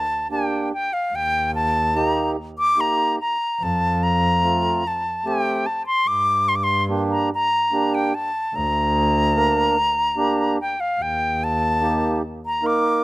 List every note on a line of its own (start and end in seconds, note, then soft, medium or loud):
0.00 0.14 D2 loud
0.00 0.28 A5 medium
0.30 0.71 A#3 medium
0.30 0.72 D4 soft
0.30 0.72 G4 medium
0.30 0.69 G5 medium
0.74 0.95 G5 medium
0.93 1.17 F5 medium
1.13 2.61 D#2 medium
1.13 1.54 G5 loud
1.55 1.98 A5 loud
1.94 2.36 A#3 medium
1.94 2.36 D#4 medium
1.94 2.37 G4 medium
1.94 2.30 A#5 medium
2.59 2.82 D6 loud
2.76 3.18 A#3 medium
2.76 3.18 D#4 soft
2.76 3.19 G4 medium
2.80 3.20 A#5 medium
3.20 3.65 A#5 medium
3.60 5.08 F2 loud
3.60 4.05 A5 loud
4.03 4.89 A#5 loud
4.42 4.83 A3 medium
4.42 4.83 C4 medium
4.42 4.84 F4 medium
4.87 5.29 A5 medium
5.25 5.66 A3 medium
5.25 5.66 C4 soft
5.25 5.66 G4 medium
5.25 5.68 G5 medium
5.66 5.86 A5 medium
5.87 6.09 C6 medium
6.07 7.55 G2 medium
6.07 6.50 D6 loud
6.48 6.57 C6 medium
6.56 6.65 D6 medium
6.64 6.83 C6 medium
6.88 7.30 A#3 medium
6.88 7.30 D4 medium
6.88 7.31 G4 medium
7.11 7.29 A#5 medium
7.34 7.96 A#5 medium
7.72 8.12 A#3 medium
7.72 8.13 D4 medium
7.72 8.13 G4 medium
7.94 8.16 G5 medium
8.15 8.57 A5 medium
8.53 10.01 D2 loud
8.53 10.59 A#5 loud
9.35 9.76 A#3 medium
9.35 9.76 D4 medium
9.35 9.77 A#4 medium
10.16 10.58 A#3 medium
10.16 10.58 D4 medium
10.16 10.58 G4 medium
10.61 10.82 G5 medium
10.80 11.04 F5 medium
10.99 12.47 D#2 medium
10.99 11.45 G5 medium
11.44 12.17 A5 loud
11.80 12.21 A#3 medium
11.80 12.22 D#4 medium
11.80 12.22 G4 medium
12.46 12.68 A#5 medium
12.62 13.04 A#3 medium
12.62 13.04 D#4 medium
12.62 13.04 A#4 medium
12.66 13.04 D6 medium